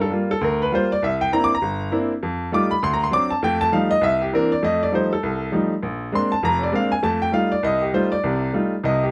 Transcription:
0.01 0.12 A4 medium
0.10 0.30 G3 medium
0.10 0.31 A#3 medium
0.10 0.31 F4 medium
0.31 0.42 A4 medium
0.41 0.67 D2 medium
0.41 0.61 A#4 medium
0.62 0.72 B4 medium
0.72 0.91 G3 medium
0.72 0.91 A#3 medium
0.72 0.91 F4 medium
0.72 0.91 C5 medium
0.92 1.02 D5 medium
1.02 1.28 C2 medium
1.02 1.21 E5 medium
1.21 1.32 G5 medium
1.32 1.51 A#3 medium
1.32 1.51 C4 soft
1.32 1.52 D4 soft
1.32 1.52 E4 medium
1.32 1.42 A#5 loud
1.44 1.52 D6 loud
1.55 1.96 A#5 medium
1.62 1.88 G1 medium
1.91 2.11 A#3 medium
1.91 2.11 C4 soft
1.91 2.11 D4 medium
1.91 2.11 E4 medium
2.23 2.48 F2 medium
2.52 2.71 G3 medium
2.52 2.72 A3 medium
2.52 2.72 D#4 medium
2.52 2.72 F4 medium
2.52 2.71 D6 medium
2.71 2.82 B5 medium
2.83 3.08 D2 medium
2.83 2.92 C6 loud
2.93 3.02 A#5 medium
3.04 3.12 C6 medium
3.11 3.31 F#3 medium
3.11 3.31 C4 medium
3.11 3.31 D4 medium
3.11 3.30 D6 loud
3.31 3.42 A5 medium
3.43 3.68 F2 medium
3.43 3.68 A3 medium
3.43 3.61 G5 medium
3.61 3.72 A5 loud
3.72 3.92 F3 medium
3.72 3.92 G3 medium
3.72 3.92 A3 medium
3.72 3.92 D#4 medium
3.72 3.90 F5 medium
3.91 4.02 D#5 medium
4.01 4.27 C2 medium
4.01 4.21 E5 medium
4.22 4.32 G4 medium
4.33 4.52 E3 medium
4.33 4.52 A#3 medium
4.33 4.52 C4 medium
4.33 4.52 D4 medium
4.33 4.51 A#4 medium
4.52 4.63 D5 medium
4.63 4.88 F2 medium
4.63 4.88 A3 medium
4.63 4.81 D#5 medium
4.83 4.93 D5 medium
4.92 5.12 F3 soft
4.92 5.12 G3 soft
4.92 5.12 A3 soft
4.92 5.12 D#4 medium
4.92 5.12 C5 medium
5.13 5.51 A4 medium
5.23 5.49 C2 medium
5.52 5.72 F3 medium
5.52 5.72 G3 soft
5.52 5.72 A3 soft
5.52 5.72 D#4 medium
5.83 6.08 A#1 medium
6.12 6.32 G#3 medium
6.12 6.32 A#3 medium
6.12 6.33 C4 soft
6.12 6.33 D4 medium
6.12 6.32 C6 medium
6.32 6.43 A5 medium
6.43 6.68 F1 medium
6.43 6.69 F2 medium
6.43 6.62 A#5 medium
6.59 6.61 C#5 medium
6.63 6.74 D5 medium
6.72 6.92 G#3 medium
6.72 6.92 A#3 medium
6.72 6.92 C4 medium
6.72 6.92 D4 medium
6.72 6.92 F5 medium
6.92 7.03 G#5 medium
7.03 7.29 F2 medium
7.03 7.29 A3 medium
7.03 7.21 A5 loud
7.22 7.33 G5 medium
7.32 7.52 G3 medium
7.32 7.52 A3 soft
7.32 7.52 D#4 soft
7.32 7.52 F4 medium
7.32 7.51 F5 medium
7.52 7.63 D5 medium
7.63 7.89 C2 medium
7.63 7.82 D#5 medium
7.81 7.93 G4 medium
7.93 8.13 G3 medium
7.93 8.13 A3 medium
7.93 8.13 D#4 soft
7.93 8.13 F4 medium
7.93 8.11 C5 medium
8.12 8.50 D5 medium
8.23 8.49 C2 medium
8.23 8.49 C3 medium
8.53 8.73 G3 medium
8.53 8.73 A3 soft
8.53 8.73 D#4 soft
8.53 8.73 F4 medium
8.84 9.09 C2 medium
8.84 9.09 C3 medium
8.84 9.02 D#5 medium
9.03 9.11 G4 medium

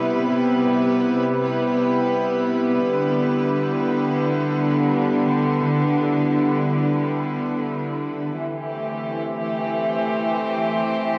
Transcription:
0.00 2.81 C3 medium
0.00 8.35 G3 medium
0.00 8.35 B3 medium
0.00 10.56 E4 medium
0.00 8.35 B4 medium
2.81 8.35 D3 medium
8.35 11.18 E3 medium
8.51 11.18 C4 medium
8.51 11.18 G4 medium
8.66 11.18 A3 medium
9.89 11.18 C5 medium

